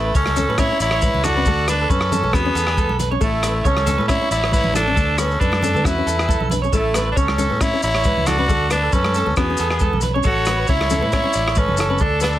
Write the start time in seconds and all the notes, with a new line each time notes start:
Already playing: A1 A3 E4
0.05 B4
0.15 C#2 C#4 A4 C#5, kick, maracas
0.26 cross-stick, high conga
0.36 C#4 A4, closed hi-hat, high conga, low conga, maracas
0.48 A2 B3 B4, high conga
0.58 C#4 E4 C#5, kick, cross-stick, maracas
0.71 C#4
0.80 A1 E4 C#5 D5, closed hi-hat, maracas
0.91 C#5, cross-stick
1.01 B4, kick, high conga, maracas
1.14 C#2, low conga
1.24 E4 F#4 A4 D5, cross-stick, closed hi-hat, low conga, maracas
1.36 C#4 B4
1.45 D2 A3 A4, kick, maracas
1.68 B3 D4 B4, cross-stick, closed hi-hat, maracas
1.82 A4
1.90 F#2 C#4 A4 B4, kick, maracas
2.01 cross-stick
2.12 C#4 A4, closed hi-hat, low conga, maracas
2.23 B1 B3 A4, high conga
2.33 E2 B3 C#4 F#4 G#4, kick, cross-stick, maracas
2.46 C#4
2.55 E2 A4, closed hi-hat, maracas
2.67 G#4, cross-stick
2.77 A4, kick, high conga, maracas
2.89 B1, low conga
2.99 B4, muted nylon-string guitar stroke, closed hi-hat, low conga, maracas
3.11 C#4 C#5
3.21 A1 A3 E4 A4, kick, maracas
3.43 B3 B4, cross-stick, closed hi-hat, maracas
3.55 muted clean electric guitar stroke
3.64 C#2 C#4 A4 C#5, kick, maracas
3.77 cross-stick, high conga
3.86 C#4 A4, closed hi-hat, high conga, low conga, maracas
3.98 A2 B3 B4, high conga
4.08 C#4 E4 C#5, kick, cross-stick, maracas
4.22 C#4
4.31 A1 E4 C#5 D5, closed hi-hat, maracas
4.42 C#5, cross-stick
4.52 E4 B4 C#5, kick, high conga, maracas
4.64 A1, low conga
4.74 D4 E4 A4, cross-stick, closed hi-hat, low conga, maracas
4.87 C#4
4.95 D2 A3 A4, kick, maracas
5.18 B3 C#4 A4 B4, cross-stick, closed hi-hat, maracas
5.31 maracas
5.40 F#2 D4 A4 B4, muted nylon-string guitar stroke, kick, maracas
5.52 cross-stick, high conga
5.62 C#4 A4, closed hi-hat, low conga, maracas
5.74 D3 B3 A4, high conga, maracas
5.84 E2 C#4 E4 F#4 B4, kick, cross-stick, maracas
5.98 C#4
6.06 E2 A4, closed hi-hat, maracas
6.19 G#4, cross-stick, maracas
6.29 A4, kick, high conga, maracas
6.40 B1, low conga
6.50 D4 B4, closed hi-hat, low conga, maracas
6.62 C#4 C#5, maracas
6.72 A1 A3 E4 A4, kick, maracas
6.94 B3 B4, cross-stick, closed hi-hat, maracas
7.05 B4
7.12 D4 B4
7.16 C#2 C#4 A4 C#5, kick, maracas
7.28 cross-stick, high conga
7.38 C#4 A4, closed hi-hat, high conga, low conga, maracas
7.50 A2 B3, high conga
7.60 C#4 E4 C#5, muted clean electric guitar stroke, kick, cross-stick, maracas
7.74 C#4
7.82 A1 E4 C#5, muted clean electric guitar stroke, closed hi-hat, maracas
7.94 C#5, cross-stick
8.04 B4, kick, high conga, maracas
8.17 C#2, low conga
8.26 E4 F#4 A4 D5, cross-stick, closed hi-hat, low conga, maracas
8.38 C#4 B4
8.48 D2 A3 A4, kick, maracas
8.70 B3 D4 B4, muted clean electric guitar stroke, cross-stick, closed hi-hat, maracas
8.83 A4
8.92 F#2 C#4 A4 B4, kick, maracas
9.04 cross-stick, high conga
9.14 C#4 A4, closed hi-hat, maracas
9.26 D2 B3, high conga
9.36 E2 B3 C#4 F#4 G#4, kick, cross-stick, maracas
9.50 C#4
9.57 E2 A4, closed hi-hat, maracas
9.70 G#4, cross-stick
9.79 A4, kick, high conga, maracas
9.93 B1, low conga
10.01 B4, closed hi-hat, low conga, maracas
10.14 C#4 C#5
10.23 A1 A3 F#4 A4 C#5, kick, maracas
10.45 B3 B4, cross-stick, closed hi-hat, maracas
10.57 B4
10.67 C#2 C#4 E4 C#5, kick, maracas
10.81 cross-stick, high conga
10.90 C#4 A4, closed hi-hat, high conga, low conga, maracas
11.01 A2 B3 B4, high conga
11.12 C#4 E4 C#5, kick, cross-stick, maracas
11.24 C#4
11.33 A1 D5, closed hi-hat, maracas
11.47 C#5, cross-stick
11.55 C#4 A4 B4, kick, high conga, maracas
11.68 F#1, low conga
11.77 E4 A4, cross-stick, closed hi-hat, maracas
11.90 C#4 B4
11.98 D2 A3 D4 A4, kick, maracas
12.02 A4
12.20 B3 D4 B4, cross-stick, closed hi-hat, maracas
12.24 A4
12.32 muted clean electric guitar stroke, maracas